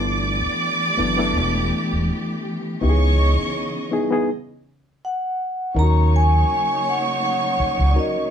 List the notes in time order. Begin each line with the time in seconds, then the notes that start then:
Already playing: G1 E3 A3 B3 D4 E4 G4 A4 D5 D6
0.46 muted fingered electric bass stroke
0.97 F#1 B3 D4 E4 A4
1.17 B3 D4 E4 A4
1.36 E1
1.93 E1
2.80 C#2 C#3 B3 D#4 E4 G4 C#5 D#5 C#6
2.89 G#4
3.39 muted fingered electric bass stroke
3.91 B3 D#4 E4 G#4
4.11 B3 D#4 E4 G#4
5.05 F#5
5.75 D#2 C#3 F#3 A#3 C#4 D#4 E4 A#4 C#5 C#6
5.79 F#4 A#5
6.16 G#5
6.89 F#5
7.25 F#5
7.60 muted fingered electric bass stroke
7.79 C#2
7.90 D5
7.95 C#4 D#4 F#4 A#4
7.99 D#5